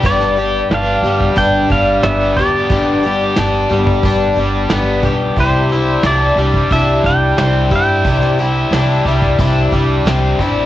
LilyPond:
<<
  \new Staff \with { instrumentName = "Pedal steel guitar" } { \time 4/4 \key c \major \tempo 4 = 90 d''4 f''4 g''8 f''8 e''8 d''8~ | d''4. r2 r8 | c''4 d''4 e''8 g''4 g''8~ | g''2~ g''8 r4. | }
  \new Staff \with { instrumentName = "Twelve-string acoustic guitar" } { \time 4/4 \key c \major <g, d g b d' g'>8 <g b d' g'>8 <g b d' g'>8 <g b d' g'>8 <g, d g b d' g'>8 <g b d' g'>8 <g b d' g'>8 <g b d' g'>8 | <g, d g b d' g'>8 <g b d' g'>8 <g b d' g'>8 <g b d' g'>8 <g, d g b d' g'>8 <g b d' g'>8 <g b d' g'>8 <g b d' g'>8 | <c g d' e' g'>8 <d' e' g'>8 <g d' e' g'>8 <d' e' g'>8 <c g d' e' g'>8 <d' e' g'>8 <g d' e' g'>8 <d' e' g'>8 | <c g d' e' g'>8 <d' e' g'>8 <g d' e' g'>8 <d' e' g'>8 <c g d' e' g'>8 <d' e' g'>8 <g d' e' g'>8 <d' e' g'>8 | }
  \new Staff \with { instrumentName = "Overdriven electric guitar" } { \time 4/4 \key c \major g,8 g'8 d'8 g8 d'8 g8 b8 g'8 | g,8 g'8 d'8 g8 d'8 g8 b8 g'8 | c8 e'8 d'8 g8 d'8 g8 c'8 e'8 | c8 e'8 d'8 g8 d'8 g8 c'8 e'8 | }
  \new Staff \with { instrumentName = "Upright bass" } { \clef bass \time 4/4 \key c \major g,,4 g,,8 g,,8 g,,8 g,,8 g,,8 d,8 | g,,4 g,,8 g,,8 g,,8 g,,8 g,,8 b,,8 | c,4 c,8 c,8 c,8 c,8 c,8 g,8 | c,4 c,8 c,8 c,8 c,8 c,8 a,,8 | }
  \new DrumStaff \with { instrumentName = "Drums" } \drummode { \time 4/4 <hho bd>16 sn16 hho8 <hho sn>8 hho16 bd16 <hho bd>8 <hho bd>8 <hho sn>8 <hho bd>8 | <hho bd>8 hho8 <hho sn>8 hho16 bd16 <hho bd>8 hho8 <hho sn>8 <hho bd>8 | <hho bd>8 hho8 <hho sn>8 hho16 bd16 <hho bd>8 <hho bd>8 <hho sn>8 <hho bd>8 | <hho bd>16 sn16 hho8 <hho sn>8 hho16 bd16 <hho bd>8 <hho bd>8 <hho sn>8 <hho bd>8 | }
>>